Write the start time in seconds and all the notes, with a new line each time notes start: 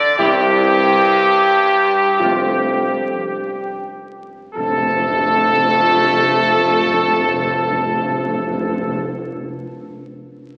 Already playing: D3 D5
0.18 C2 G2 C3 G3 E4 G4
2.20 F2 A3 F4
4.55 F2 A3 F4 A4
4.64 F2
4.70 F2
4.76 F2
4.83 F2
4.89 F2
4.96 F2
5.02 F2
5.09 F2
5.15 F2
5.22 F2
5.28 F2
5.35 F2
5.41 F2
5.48 F2
5.54 F2
5.61 F2
5.67 F2
5.74 F2
5.80 F2
5.87 F2
5.93 F2
6.00 F2
6.07 F2
6.13 F2
6.19 F2
6.26 F2
6.32 F2
6.39 F2
6.45 F2
6.51 F2
6.58 F2
6.64 F2
6.71 F2
6.78 F2
6.85 F2
6.91 F2
6.98 F2
7.05 F2
7.11 F2
7.17 F2
7.24 F2
7.30 F2
7.36 F2
7.43 F2
7.50 F2
7.56 F2
7.62 F2
7.69 F2
7.76 F2
7.82 F2
7.88 F2
7.96 F2
8.02 F2
8.09 F2
8.15 F2
8.22 F2
8.28 F2
8.35 F2
8.42 F2
8.49 F2
8.55 F2
8.61 F2
8.68 F2
8.74 F2
8.80 F2
8.87 F2
8.93 F2